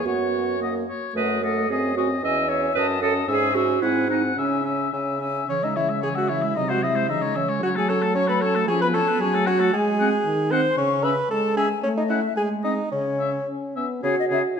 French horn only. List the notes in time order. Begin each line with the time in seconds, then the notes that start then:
0.04 B3
0.60 A#3
1.14 A3
1.42 A3
1.69 C4
1.96 C4
2.23 C#4
2.49 C#4
2.75 C#4
3.02 C#4
3.29 C#4
3.55 C#4
3.82 C4
4.09 C4
4.36 C#4
4.64 C#4
4.93 C#4
5.22 C#4
5.48 C#3
6.57 C3
7.08 C#3
7.61 F#3
8.67 F3
9.19 F#3
9.73 G#3
10.25 D#3
10.77 C#3
11.30 G#3
11.83 A3
12.36 G#3
12.93 C#3
13.48 C#4
13.76 B3
14.03 F#4